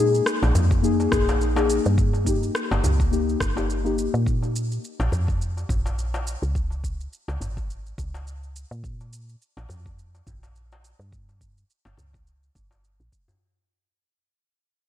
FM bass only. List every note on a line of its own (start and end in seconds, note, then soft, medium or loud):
0.00 0.22 A#2 loud
0.43 0.52 A#1 medium
0.55 1.07 F2 medium
1.12 1.79 A#1 medium
1.86 2.51 G2 loud
2.71 2.81 G1 medium
2.84 3.36 C#2 medium
3.41 4.08 G1 medium
4.14 4.79 A#2 loud
5.00 5.09 A#1 medium
5.12 5.65 F2 medium
5.69 6.36 A#1 medium
6.42 7.07 C#2 loud
7.28 7.38 C#2 medium
7.41 7.93 G#1 medium
7.98 8.65 C#2 medium
8.71 9.36 A#2 loud
9.57 9.66 A#1 medium
9.69 10.22 F2 medium
10.27 10.94 A#1 medium
10.99 11.64 G2 loud
11.85 11.95 G1 medium
11.98 12.50 C#2 medium
12.55 12.99 G1 medium
13.00 13.09 A#1 medium